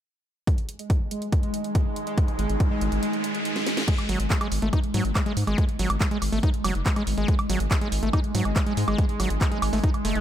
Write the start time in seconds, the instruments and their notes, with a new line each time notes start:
0.47 synth texture G#3, ambient pad D#4, kick, closed hi-hat, riser
0.58 closed hi-hat
0.65 ambient pad G#4, closed hi-hat
0.79 closed hi-hat
0.90 kick, closed hi-hat
1.11 closed hi-hat
1.22 closed hi-hat
1.32 kick, closed hi-hat
1.43 closed hi-hat
1.54 ambient pad G#5, closed hi-hat
1.64 closed hi-hat
1.75 kick, closed hi-hat
1.96 closed hi-hat
2.07 closed hi-hat
2.18 kick, closed hi-hat
2.28 closed hi-hat
2.39 analog synth bass G#1, closed hi-hat
2.50 analog synth bass G#1, closed hi-hat
2.60 kick, closed hi-hat
2.81 analog synth bass G#1, closed hi-hat
2.92 analog synth bass G#1, closed hi-hat
3.03 closed hi-hat
3.13 closed hi-hat
3.24 closed hi-hat
3.35 closed hi-hat
3.45 closed hi-hat
3.56 snare, closed hi-hat
3.67 snare, closed hi-hat
3.77 snare, closed hi-hat
3.88 synth texture G#3, acid bass G#3, kick, closed hi-hat, crash
3.98 closed hi-hat, high woodblock
4.09 analog synth bass G#1, acid bass F#3, open hi-hat
4.20 analog synth bass G#1, closed hi-hat
4.30 acid bass G#3, kick, clap, closed hi-hat
4.41 acid bass G#3, closed hi-hat, high woodblock
4.52 analog synth bass G#1, open hi-hat
4.62 analog synth bass G#1, acid bass A3, closed hi-hat
4.73 acid bass D#4, kick, closed hi-hat, high woodblock
4.84 closed hi-hat
4.94 analog synth bass G#2, acid bass F#3, open hi-hat
5.05 analog synth bass G#1, closed hi-hat
5.15 acid bass G#3, kick, clap, closed hi-hat, high woodblock
5.26 acid bass G#3, closed hi-hat
5.37 analog synth bass G#2, open hi-hat
5.47 analog synth bass G#1, acid bass G#3, closed hi-hat, high woodblock
5.58 acid bass G#3, kick, closed hi-hat
5.69 closed hi-hat
5.79 analog synth bass G#1, acid bass F#3, open hi-hat
5.90 analog synth bass G#1, closed hi-hat, high woodblock
6.01 acid bass G#3, kick, clap, closed hi-hat
6.11 acid bass G#3, closed hi-hat
6.22 analog synth bass G#1, open hi-hat, high woodblock
6.32 analog synth bass G#1, acid bass A3, open hi-hat
6.43 acid bass D#4, kick, closed hi-hat
6.54 closed hi-hat
6.64 analog synth bass F#1, acid bass F#3, open hi-hat, high woodblock
6.75 analog synth bass F#1, closed hi-hat
6.86 acid bass G#3, kick, clap, closed hi-hat
6.96 acid bass G#3, closed hi-hat, high woodblock
7.07 analog synth bass G#1, open hi-hat
7.18 analog synth bass G#1, acid bass G#3, closed hi-hat
7.28 acid bass G#3, kick, closed hi-hat
7.39 closed hi-hat, high woodblock
7.49 analog synth bass G#1, acid bass F#3, open hi-hat
7.60 analog synth bass G#1, closed hi-hat
7.71 acid bass G#3, kick, clap, closed hi-hat, high woodblock
7.81 acid bass G#3, closed hi-hat
7.92 analog synth bass G#1, open hi-hat
8.03 analog synth bass G#1, acid bass A3, closed hi-hat
8.13 acid bass D#4, kick, closed hi-hat, high woodblock
8.24 closed hi-hat
8.35 analog synth bass G#2, acid bass F#3, open hi-hat
8.45 analog synth bass G#1, closed hi-hat, high woodblock
8.56 acid bass G#3, kick, clap, closed hi-hat
8.67 acid bass G#3, closed hi-hat
8.77 analog synth bass G#2, open hi-hat
8.88 analog synth bass G#1, acid bass G#3, closed hi-hat, high woodblock
8.98 acid bass G#3, kick, closed hi-hat
9.09 closed hi-hat
9.20 analog synth bass G#1, acid bass F#3, open hi-hat, high woodblock
9.30 analog synth bass G#1, closed hi-hat
9.41 acid bass G#3, kick, clap, closed hi-hat
9.52 acid bass G#3, closed hi-hat
9.62 analog synth bass G#1, open hi-hat, high woodblock
9.73 analog synth bass G#1, acid bass A3, open hi-hat
9.84 acid bass D#4, kick, closed hi-hat
9.94 closed hi-hat, high woodblock
10.05 analog synth bass F#1, acid bass A3, open hi-hat
10.15 analog synth bass F#1, acid bass G#3, closed hi-hat